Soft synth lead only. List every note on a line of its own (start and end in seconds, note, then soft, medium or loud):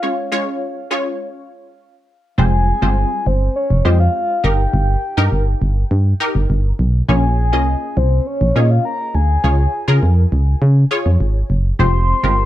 0.00 0.15 F5 medium
2.38 3.28 G#5 loud
3.27 3.55 C5 loud
3.56 3.83 C#5 loud
3.85 3.99 D#5 loud
4.00 4.14 F5 medium
4.14 4.45 F5 loud
4.44 5.62 G5 loud
7.09 7.98 G#5 loud
7.97 8.28 C5 medium
8.27 8.57 C#5 loud
8.56 8.72 D#5 loud
8.71 8.85 F5 loud
8.85 9.16 A#5 loud
9.15 10.32 G#5 loud
11.79 12.45 C6 loud